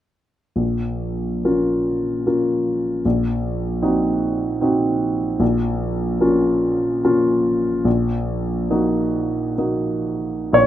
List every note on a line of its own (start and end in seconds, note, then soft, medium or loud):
0.56 1.41 A#1 soft
1.45 2.23 A#3 soft
1.45 2.23 C#4 soft
1.45 2.23 F4 soft
2.26 3.01 A#3 soft
2.26 3.01 C#4 soft
2.26 3.01 F4 soft
3.05 3.81 A#1 soft
3.82 4.58 C4 soft
3.82 4.58 D#4 soft
3.82 4.58 F#4 soft
4.61 5.36 C4 soft
4.61 5.37 D#4 soft
4.61 5.37 F#4 soft
5.40 6.19 A#1 soft
6.20 7.00 A#3 soft
6.20 7.00 C#4 soft
6.20 7.00 F4 soft
7.04 7.81 A#3 soft
7.04 7.81 C#4 soft
7.04 7.81 F4 soft
7.85 8.66 A#1 soft
8.70 9.54 A#3 soft
8.70 9.54 D#4 soft
8.70 9.54 F#4 soft
9.58 10.51 A#3 soft
9.58 10.52 D#4 soft
9.58 10.52 F#4 soft
10.53 10.67 A#1 soft
10.53 10.67 C#5 medium